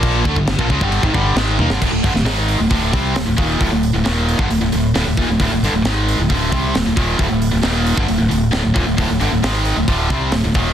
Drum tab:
CC |x---x---x---x---|x---------------|----------------|----------------|
HH |----------------|--o-o-o-o-o-o-o-|o-o-o-o-o-o-o---|o-o-o-o-o-o-o-o-|
SD |----o-------o--o|---oo-------o---|----o-------o---|----o-------o---|
T1 |--------------o-|----------------|----------------|----------------|
BD |o-oo-ooo-oo-----|o-o-----o-o---o-|o------o------o-|o-------o-o---o-|

CC |----------------|----------------|
HH |o-o-o-o-o-o-o-o-|o-o-o-o-o-o-o-o-|
SD |----o-------o---|----o-------o---|
T1 |----------------|----------------|
BD |o------o------o-|o-------o-o---o-|